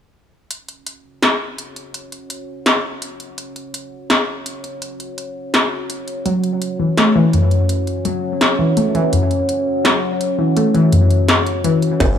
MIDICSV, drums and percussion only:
0, 0, Header, 1, 3, 480
1, 0, Start_track
1, 0, Tempo, 359281
1, 677, Time_signature, 4, 2, 24, 8
1, 16278, End_track
2, 0, Start_track
2, 0, Title_t, "Struck metal"
2, 16036, Note_on_c, 9, 77, 54
2, 16170, Note_off_c, 9, 77, 0
2, 16278, End_track
3, 0, Start_track
3, 0, Title_t, "Drums"
3, 676, Note_on_c, 9, 42, 69
3, 810, Note_off_c, 9, 42, 0
3, 916, Note_on_c, 9, 42, 33
3, 1049, Note_off_c, 9, 42, 0
3, 1156, Note_on_c, 9, 42, 61
3, 1290, Note_off_c, 9, 42, 0
3, 1637, Note_on_c, 9, 38, 104
3, 1637, Note_on_c, 9, 42, 70
3, 1771, Note_off_c, 9, 38, 0
3, 1771, Note_off_c, 9, 42, 0
3, 2117, Note_on_c, 9, 42, 58
3, 2250, Note_off_c, 9, 42, 0
3, 2356, Note_on_c, 9, 42, 33
3, 2490, Note_off_c, 9, 42, 0
3, 2596, Note_on_c, 9, 42, 70
3, 2729, Note_off_c, 9, 42, 0
3, 2836, Note_on_c, 9, 42, 34
3, 2970, Note_off_c, 9, 42, 0
3, 3074, Note_on_c, 9, 42, 62
3, 3207, Note_off_c, 9, 42, 0
3, 3554, Note_on_c, 9, 38, 105
3, 3554, Note_on_c, 9, 42, 70
3, 3688, Note_off_c, 9, 38, 0
3, 3688, Note_off_c, 9, 42, 0
3, 4035, Note_on_c, 9, 42, 61
3, 4168, Note_off_c, 9, 42, 0
3, 4275, Note_on_c, 9, 42, 32
3, 4409, Note_off_c, 9, 42, 0
3, 4515, Note_on_c, 9, 42, 72
3, 4648, Note_off_c, 9, 42, 0
3, 4757, Note_on_c, 9, 42, 33
3, 4890, Note_off_c, 9, 42, 0
3, 4998, Note_on_c, 9, 42, 61
3, 5132, Note_off_c, 9, 42, 0
3, 5477, Note_on_c, 9, 38, 107
3, 5477, Note_on_c, 9, 42, 72
3, 5611, Note_off_c, 9, 38, 0
3, 5611, Note_off_c, 9, 42, 0
3, 5958, Note_on_c, 9, 42, 59
3, 6092, Note_off_c, 9, 42, 0
3, 6199, Note_on_c, 9, 42, 33
3, 6333, Note_off_c, 9, 42, 0
3, 6438, Note_on_c, 9, 42, 68
3, 6572, Note_off_c, 9, 42, 0
3, 6679, Note_on_c, 9, 42, 31
3, 6813, Note_off_c, 9, 42, 0
3, 6919, Note_on_c, 9, 42, 60
3, 7053, Note_off_c, 9, 42, 0
3, 7399, Note_on_c, 9, 38, 103
3, 7399, Note_on_c, 9, 42, 68
3, 7532, Note_off_c, 9, 38, 0
3, 7532, Note_off_c, 9, 42, 0
3, 7879, Note_on_c, 9, 42, 59
3, 8012, Note_off_c, 9, 42, 0
3, 8118, Note_on_c, 9, 42, 31
3, 8251, Note_off_c, 9, 42, 0
3, 8358, Note_on_c, 9, 42, 65
3, 8492, Note_off_c, 9, 42, 0
3, 8598, Note_on_c, 9, 42, 32
3, 8731, Note_off_c, 9, 42, 0
3, 8839, Note_on_c, 9, 42, 56
3, 8973, Note_off_c, 9, 42, 0
3, 9319, Note_on_c, 9, 38, 101
3, 9319, Note_on_c, 9, 42, 66
3, 9452, Note_off_c, 9, 38, 0
3, 9452, Note_off_c, 9, 42, 0
3, 9799, Note_on_c, 9, 42, 57
3, 9932, Note_off_c, 9, 42, 0
3, 10037, Note_on_c, 9, 42, 31
3, 10170, Note_off_c, 9, 42, 0
3, 10277, Note_on_c, 9, 42, 66
3, 10410, Note_off_c, 9, 42, 0
3, 10518, Note_on_c, 9, 42, 32
3, 10652, Note_off_c, 9, 42, 0
3, 10756, Note_on_c, 9, 42, 59
3, 10889, Note_off_c, 9, 42, 0
3, 11236, Note_on_c, 9, 38, 102
3, 11236, Note_on_c, 9, 42, 67
3, 11370, Note_off_c, 9, 38, 0
3, 11370, Note_off_c, 9, 42, 0
3, 11716, Note_on_c, 9, 42, 57
3, 11849, Note_off_c, 9, 42, 0
3, 11955, Note_on_c, 9, 42, 31
3, 12089, Note_off_c, 9, 42, 0
3, 12195, Note_on_c, 9, 42, 68
3, 12328, Note_off_c, 9, 42, 0
3, 12436, Note_on_c, 9, 42, 33
3, 12570, Note_off_c, 9, 42, 0
3, 12677, Note_on_c, 9, 42, 61
3, 12810, Note_off_c, 9, 42, 0
3, 13158, Note_on_c, 9, 38, 101
3, 13158, Note_on_c, 9, 42, 68
3, 13291, Note_off_c, 9, 38, 0
3, 13291, Note_off_c, 9, 42, 0
3, 13637, Note_on_c, 9, 42, 59
3, 13770, Note_off_c, 9, 42, 0
3, 14116, Note_on_c, 9, 42, 70
3, 14250, Note_off_c, 9, 42, 0
3, 14356, Note_on_c, 9, 42, 34
3, 14490, Note_off_c, 9, 42, 0
3, 14596, Note_on_c, 9, 42, 62
3, 14729, Note_off_c, 9, 42, 0
3, 14837, Note_on_c, 9, 42, 34
3, 14970, Note_off_c, 9, 42, 0
3, 15077, Note_on_c, 9, 38, 106
3, 15077, Note_on_c, 9, 42, 74
3, 15210, Note_off_c, 9, 38, 0
3, 15210, Note_off_c, 9, 42, 0
3, 15318, Note_on_c, 9, 42, 34
3, 15451, Note_off_c, 9, 42, 0
3, 15556, Note_on_c, 9, 42, 64
3, 15690, Note_off_c, 9, 42, 0
3, 15797, Note_on_c, 9, 42, 35
3, 15931, Note_off_c, 9, 42, 0
3, 16036, Note_on_c, 9, 42, 79
3, 16036, Note_on_c, 9, 49, 98
3, 16037, Note_on_c, 9, 36, 118
3, 16170, Note_off_c, 9, 36, 0
3, 16170, Note_off_c, 9, 42, 0
3, 16170, Note_off_c, 9, 49, 0
3, 16278, End_track
0, 0, End_of_file